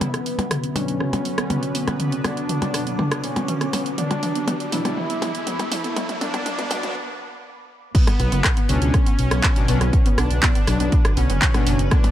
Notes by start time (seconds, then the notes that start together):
Already playing: E5 B5
0.01 D3 F#3 B3 F#4 B4, closed hi-hat, mid tom, riser, percussion blips
0.14 cross-stick, closed hi-hat
0.26 B3, open hi-hat
0.39 B3, closed hi-hat, percussion blips
0.51 cross-stick, closed hi-hat, mid tom
0.64 B3 D6, closed hi-hat
0.75 B2 F#3 B3 C#4 D4, open hi-hat, percussion blips
0.88 B2 F#3 D4, closed hi-hat
1.00 B3, cross-stick, mid tom
1.13 B3, closed hi-hat, percussion blips
1.25 open hi-hat
1.38 B3, cross-stick, closed hi-hat
1.50 B3, closed hi-hat, mid tom, percussion blips
1.63 closed hi-hat
1.75 B3, open hi-hat
1.87 B3, cross-stick, closed hi-hat, percussion blips
2.00 closed hi-hat, mid tom
2.12 B3, closed hi-hat
2.24 B3 D4, cross-stick, open hi-hat, percussion blips
2.37 closed hi-hat
2.49 B3, closed hi-hat, mid tom
2.62 B3, closed hi-hat, percussion blips
2.74 B2 F#3 D4, cross-stick, open hi-hat
2.87 B2 F#3 B3 D4, closed hi-hat
2.99 B3, mid tom, percussion blips
3.12 cross-stick, closed hi-hat
3.24 B3 C#4, open hi-hat
3.36 B3, closed hi-hat, percussion blips
3.48 closed hi-hat, mid tom
3.61 B3, cross-stick, closed hi-hat
3.73 B3, open hi-hat, percussion blips
3.86 closed hi-hat
3.98 B3 D4, closed hi-hat, mid tom
4.11 B3, closed hi-hat, percussion blips
4.23 open hi-hat, mid tom
4.35 B3, closed hi-hat
4.48 B3, closed hi-hat, mid tom, percussion blips
4.60 closed hi-hat
4.72 B2 F#3 B3 D4 E4, open hi-hat, mid tom
4.85 B2 F#3 B3 D4, closed hi-hat, percussion blips
4.97 mid tom
5.10 B3, closed hi-hat
5.22 B3, open hi-hat, mid tom, percussion blips
5.35 closed hi-hat
5.47 B3, closed hi-hat, mid tom
5.59 B3, closed hi-hat, percussion blips
5.72 open hi-hat, mid tom
5.84 B3, closed hi-hat
5.96 B3, closed hi-hat, mid tom, percussion blips
6.09 closed hi-hat, mid tom
6.21 B3 D4, open hi-hat, mid tom
6.34 B3, closed hi-hat, mid tom, percussion blips
6.46 closed hi-hat, mid tom
6.59 B3, closed hi-hat, mid tom
6.71 B2 F#3 B3 D4, open hi-hat, mid tom, percussion blips
6.83 B2 F#3 D4, closed hi-hat, mid tom
7.95 D3 B3 F#4 B4 F#5, kick, closed hi-hat, crash
8.07 cross-stick, closed hi-hat, percussion blips
8.20 B1 B3, open hi-hat
8.32 F#1 B3 B4, closed hi-hat
8.40 F#4
8.44 kick, cross-stick, clap, closed hi-hat
8.57 B3, closed hi-hat
8.69 C#2 B2 F#3 B3 C#4 D4, open hi-hat
8.82 C#2 B2 F#3 D4, closed hi-hat
8.94 B3, kick, cross-stick, closed hi-hat
9.06 B3, closed hi-hat
9.19 B1, open hi-hat
9.31 B1 B3, cross-stick, closed hi-hat
9.43 B3, kick, clap, closed hi-hat
9.56 B2 F#3 D4, closed hi-hat
9.68 B1 B2 F#3 B3 D4, open hi-hat
9.81 B1 B3, cross-stick, closed hi-hat
9.93 kick, closed hi-hat
10.06 B3, closed hi-hat
10.18 B1 B3 D4, cross-stick, open hi-hat
10.30 B1, closed hi-hat
10.43 B3, kick, clap, closed hi-hat
10.55 B3, closed hi-hat
10.67 B1 B2 F#3 D4, cross-stick, open hi-hat
10.80 B1 B2 F#3 B3 D4, closed hi-hat
10.92 B3, kick, closed hi-hat
11.05 cross-stick, closed hi-hat
11.17 B1 B3 C#4, open hi-hat
11.30 F#1 B3, closed hi-hat
11.42 kick, clap, closed hi-hat
11.54 B2 F#3 B3 D4, cross-stick, closed hi-hat, percussion blips
11.67 F#1 B2 F#3 B3 D4, open hi-hat
11.79 F#1, closed hi-hat
11.91 B3 D4, kick, cross-stick, closed hi-hat
12.04 B3, closed hi-hat, percussion blips